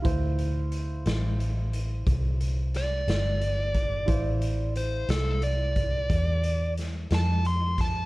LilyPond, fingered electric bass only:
\new Staff \with { instrumentName = "Fingered electric bass" } { \clef bass \time 12/8 \key d \minor \tempo 4. = 60 d,4. a,,4. c,4. g,,4. | a,,4. c,4. e,4. f,4. | }